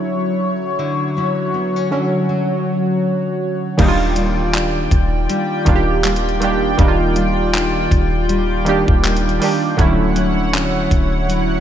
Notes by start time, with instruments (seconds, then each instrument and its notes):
Already playing: nylon-string guitar D3 F#3 C#4 E4, synth keys D3 F#3 C#4, analog synth pad D3 F#3 E4 C#5
0.79 nylon-string guitar D3 E4, analog synth pad F#4
1.17 nylon-string guitar F#3 C#4 E4
1.54 nylon-string guitar B3
1.76 nylon-string guitar C#4
1.91 synth keys D3 F#3 C#4, nylon-string guitar F#3 C#4 E4
2.29 nylon-string guitar F#3
3.78 808-style bass D#1, synth keys D#3 G3 A#3 D4, nylon-string guitar D#3 F4, analog synth pad F4 D5 G5, kick, closed hi-hat, crash
3.82 synth keys D#4
3.88 synth keys F4
4.16 nylon-string guitar G3 D4 F4, closed hi-hat
4.54 nylon-string guitar D4, clap, closed hi-hat
4.91 808-style bass D#1, kick, closed hi-hat
5.29 nylon-string guitar G3, closed hi-hat
5.65 808-style bass D#1, synth keys D#3 G3 A#3 D4, kick, closed hi-hat
5.69 synth keys F4
5.75 synth keys G4
6.04 nylon-string guitar G3 D4 F4, clap, closed hi-hat
6.16 closed hi-hat
6.29 closed hi-hat
6.40 synth keys D#3 G3 A#3 D4, closed hi-hat
6.44 synth keys G4
6.78 808-style bass D#1, synth keys D#3 G3 A#3 D4, nylon-string guitar D#3 F4, kick, closed hi-hat
6.82 synth keys D#4
6.88 synth keys F4
7.16 nylon-string guitar G3 D4 F4, closed hi-hat
7.54 nylon-string guitar D4, clap, closed hi-hat
7.91 808-style bass D#1, kick, closed hi-hat
8.29 nylon-string guitar G3, closed hi-hat
8.65 synth keys D#3 G3 A#3 D4, closed hi-hat
8.69 synth keys G4
8.88 808-style bass D#1, kick
9.04 nylon-string guitar G3 D4 F4, clap, closed hi-hat
9.16 closed hi-hat
9.29 closed hi-hat
9.40 synth keys D#3 G3 A#3 D4, open hi-hat
9.44 synth keys G4
9.77 808-style bass D1, synth keys D3 F#3 A3 C#4, nylon-string guitar D3 E4, analog synth pad E4 C#5 F#5, kick, closed hi-hat
9.81 synth keys E4
10.16 nylon-string guitar F#3 C#4 E4, closed hi-hat
10.54 nylon-string guitar C#4, clap, closed hi-hat
10.91 808-style bass D1, kick, closed hi-hat
11.29 nylon-string guitar F#3, closed hi-hat